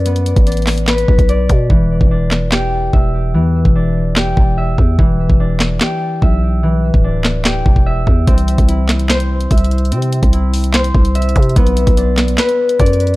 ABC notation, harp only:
X:1
M:4/4
L:1/8
Q:1/4=146
K:Em
V:1 name="Harp"
[B,DBd]2 D2 B2 d2 | E,2 D2 G2 e2 | E,2 D2 G2 e2 | E,2 D2 G2 e2 |
E,2 D2 G2 e2 | C2 E2 c2 e2 | C2 E2 c2 e2 | B,2 D2 B2 d2 |]